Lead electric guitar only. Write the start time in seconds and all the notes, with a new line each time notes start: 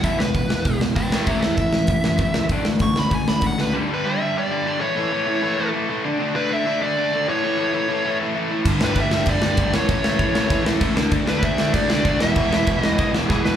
0.04 E5
0.19 B4
0.95 B4 G5
1.13 B4 G5
1.27 G4 E5
1.41 G4 E5
1.56 E5
2.82 C#6
2.99 B5
3.15 G#5
3.28 B5
3.46 F#5
3.61 B4
3.94 B4
4.08 E5
4.38 D5
4.81 C#5
6.36 B4
6.53 E5
6.82 D5
7.29 C#5
8.84 B4
9.00 E5
9.29 D5
9.75 C#5
11.29 B4
11.44 E5
11.74 D5
12.22 E5
12.82 D#5
13.29 G#4
13.44 B4